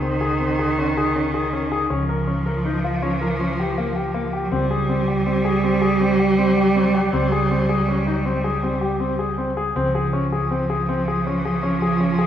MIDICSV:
0, 0, Header, 1, 4, 480
1, 0, Start_track
1, 0, Tempo, 374298
1, 2449, Time_signature, 7, 2, 24, 8
1, 15732, End_track
2, 0, Start_track
2, 0, Title_t, "Grand piano"
2, 0, Program_c, 0, 0
2, 21, Note_on_c, 0, 60, 66
2, 171, Note_off_c, 0, 60, 0
2, 268, Note_on_c, 0, 68, 66
2, 417, Note_off_c, 0, 68, 0
2, 511, Note_on_c, 0, 60, 62
2, 660, Note_off_c, 0, 60, 0
2, 757, Note_on_c, 0, 68, 57
2, 904, Note_off_c, 0, 68, 0
2, 1004, Note_on_c, 0, 61, 67
2, 1150, Note_off_c, 0, 61, 0
2, 1249, Note_on_c, 0, 68, 64
2, 1394, Note_off_c, 0, 68, 0
2, 1483, Note_on_c, 0, 61, 62
2, 1630, Note_off_c, 0, 61, 0
2, 1718, Note_on_c, 0, 68, 60
2, 1867, Note_off_c, 0, 68, 0
2, 1962, Note_on_c, 0, 61, 65
2, 2110, Note_off_c, 0, 61, 0
2, 2201, Note_on_c, 0, 68, 67
2, 2349, Note_off_c, 0, 68, 0
2, 2437, Note_on_c, 0, 61, 77
2, 2586, Note_off_c, 0, 61, 0
2, 2679, Note_on_c, 0, 70, 60
2, 2827, Note_off_c, 0, 70, 0
2, 2915, Note_on_c, 0, 61, 59
2, 3065, Note_off_c, 0, 61, 0
2, 3158, Note_on_c, 0, 70, 63
2, 3307, Note_off_c, 0, 70, 0
2, 3402, Note_on_c, 0, 63, 65
2, 3550, Note_off_c, 0, 63, 0
2, 3643, Note_on_c, 0, 65, 62
2, 3791, Note_off_c, 0, 65, 0
2, 3878, Note_on_c, 0, 61, 71
2, 4028, Note_off_c, 0, 61, 0
2, 4119, Note_on_c, 0, 70, 66
2, 4268, Note_off_c, 0, 70, 0
2, 4364, Note_on_c, 0, 61, 58
2, 4511, Note_off_c, 0, 61, 0
2, 4610, Note_on_c, 0, 67, 60
2, 4754, Note_off_c, 0, 67, 0
2, 4846, Note_on_c, 0, 58, 69
2, 4990, Note_off_c, 0, 58, 0
2, 5077, Note_on_c, 0, 67, 62
2, 5223, Note_off_c, 0, 67, 0
2, 5313, Note_on_c, 0, 58, 71
2, 5461, Note_off_c, 0, 58, 0
2, 5554, Note_on_c, 0, 67, 67
2, 5701, Note_off_c, 0, 67, 0
2, 5792, Note_on_c, 0, 60, 81
2, 5939, Note_off_c, 0, 60, 0
2, 6036, Note_on_c, 0, 68, 62
2, 6182, Note_off_c, 0, 68, 0
2, 6270, Note_on_c, 0, 60, 71
2, 6417, Note_off_c, 0, 60, 0
2, 6513, Note_on_c, 0, 67, 58
2, 6658, Note_off_c, 0, 67, 0
2, 6746, Note_on_c, 0, 60, 67
2, 6892, Note_off_c, 0, 60, 0
2, 6985, Note_on_c, 0, 68, 66
2, 7131, Note_off_c, 0, 68, 0
2, 7223, Note_on_c, 0, 60, 72
2, 7370, Note_off_c, 0, 60, 0
2, 7458, Note_on_c, 0, 68, 62
2, 7606, Note_off_c, 0, 68, 0
2, 7702, Note_on_c, 0, 60, 67
2, 7849, Note_off_c, 0, 60, 0
2, 7943, Note_on_c, 0, 67, 64
2, 8089, Note_off_c, 0, 67, 0
2, 8182, Note_on_c, 0, 60, 69
2, 8328, Note_off_c, 0, 60, 0
2, 8428, Note_on_c, 0, 67, 68
2, 8572, Note_off_c, 0, 67, 0
2, 8662, Note_on_c, 0, 60, 67
2, 8807, Note_off_c, 0, 60, 0
2, 8906, Note_on_c, 0, 67, 67
2, 9050, Note_off_c, 0, 67, 0
2, 9146, Note_on_c, 0, 60, 84
2, 9290, Note_off_c, 0, 60, 0
2, 9386, Note_on_c, 0, 68, 64
2, 9530, Note_off_c, 0, 68, 0
2, 9629, Note_on_c, 0, 60, 68
2, 9772, Note_off_c, 0, 60, 0
2, 9866, Note_on_c, 0, 68, 62
2, 10010, Note_off_c, 0, 68, 0
2, 10110, Note_on_c, 0, 61, 63
2, 10253, Note_off_c, 0, 61, 0
2, 10346, Note_on_c, 0, 63, 64
2, 10490, Note_off_c, 0, 63, 0
2, 10583, Note_on_c, 0, 60, 68
2, 10728, Note_off_c, 0, 60, 0
2, 10827, Note_on_c, 0, 68, 63
2, 10971, Note_off_c, 0, 68, 0
2, 11068, Note_on_c, 0, 60, 63
2, 11213, Note_off_c, 0, 60, 0
2, 11301, Note_on_c, 0, 67, 57
2, 11448, Note_off_c, 0, 67, 0
2, 11543, Note_on_c, 0, 60, 67
2, 11690, Note_off_c, 0, 60, 0
2, 11785, Note_on_c, 0, 68, 56
2, 11932, Note_off_c, 0, 68, 0
2, 12028, Note_on_c, 0, 60, 65
2, 12175, Note_off_c, 0, 60, 0
2, 12273, Note_on_c, 0, 68, 67
2, 12418, Note_off_c, 0, 68, 0
2, 12515, Note_on_c, 0, 60, 83
2, 12661, Note_off_c, 0, 60, 0
2, 12759, Note_on_c, 0, 68, 63
2, 12904, Note_off_c, 0, 68, 0
2, 12991, Note_on_c, 0, 61, 64
2, 13139, Note_off_c, 0, 61, 0
2, 13240, Note_on_c, 0, 68, 60
2, 13384, Note_off_c, 0, 68, 0
2, 13475, Note_on_c, 0, 60, 71
2, 13621, Note_off_c, 0, 60, 0
2, 13718, Note_on_c, 0, 68, 63
2, 13863, Note_off_c, 0, 68, 0
2, 13962, Note_on_c, 0, 60, 73
2, 14106, Note_off_c, 0, 60, 0
2, 14209, Note_on_c, 0, 68, 61
2, 14350, Note_off_c, 0, 68, 0
2, 14448, Note_on_c, 0, 61, 64
2, 14589, Note_off_c, 0, 61, 0
2, 14687, Note_on_c, 0, 68, 58
2, 14828, Note_off_c, 0, 68, 0
2, 14914, Note_on_c, 0, 61, 71
2, 15059, Note_off_c, 0, 61, 0
2, 15159, Note_on_c, 0, 68, 66
2, 15301, Note_off_c, 0, 68, 0
2, 15392, Note_on_c, 0, 61, 69
2, 15535, Note_off_c, 0, 61, 0
2, 15627, Note_on_c, 0, 68, 72
2, 15732, Note_off_c, 0, 68, 0
2, 15732, End_track
3, 0, Start_track
3, 0, Title_t, "Cello"
3, 0, Program_c, 1, 42
3, 0, Note_on_c, 1, 51, 82
3, 2432, Note_on_c, 1, 53, 92
3, 2451, Note_off_c, 1, 51, 0
3, 5702, Note_on_c, 1, 54, 64
3, 5721, Note_off_c, 1, 53, 0
3, 5803, Note_on_c, 1, 55, 97
3, 5822, Note_off_c, 1, 54, 0
3, 12272, Note_off_c, 1, 55, 0
3, 12518, Note_on_c, 1, 53, 93
3, 15732, Note_off_c, 1, 53, 0
3, 15732, End_track
4, 0, Start_track
4, 0, Title_t, "Picked electric bass"
4, 0, Program_c, 2, 34
4, 0, Note_on_c, 2, 37, 61
4, 2398, Note_off_c, 2, 37, 0
4, 2446, Note_on_c, 2, 37, 61
4, 5748, Note_off_c, 2, 37, 0
4, 5796, Note_on_c, 2, 37, 62
4, 9089, Note_off_c, 2, 37, 0
4, 9145, Note_on_c, 2, 37, 61
4, 12463, Note_off_c, 2, 37, 0
4, 12516, Note_on_c, 2, 37, 61
4, 15732, Note_off_c, 2, 37, 0
4, 15732, End_track
0, 0, End_of_file